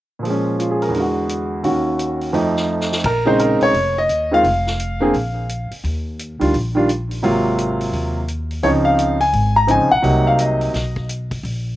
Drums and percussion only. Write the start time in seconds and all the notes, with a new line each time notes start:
0.25 open hi-hat
0.60 closed hi-hat
0.82 open hi-hat
0.94 open hi-hat
1.29 closed hi-hat
1.64 open hi-hat
1.99 closed hi-hat
2.21 open hi-hat
2.34 open hi-hat
2.57 snare
2.81 snare
2.92 snare
3.04 kick, ride
3.39 closed hi-hat
3.61 open hi-hat
3.74 open hi-hat
4.09 closed hi-hat
4.44 open hi-hat
4.67 snare
4.80 closed hi-hat
5.14 open hi-hat
5.49 closed hi-hat
5.71 open hi-hat
5.84 open hi-hat
6.19 closed hi-hat
6.41 open hi-hat
6.54 open hi-hat
6.89 closed hi-hat
7.11 open hi-hat
7.24 open hi-hat
7.58 closed hi-hat
7.81 open hi-hat
7.93 open hi-hat
8.28 closed hi-hat
8.51 open hi-hat
8.63 open hi-hat
8.99 closed hi-hat
9.20 open hi-hat
9.33 open hi-hat
9.68 closed hi-hat
10.04 open hi-hat
10.39 closed hi-hat
10.61 open hi-hat
10.74 snare, open hi-hat
10.96 kick
11.09 closed hi-hat
11.31 kick, open hi-hat
11.45 open hi-hat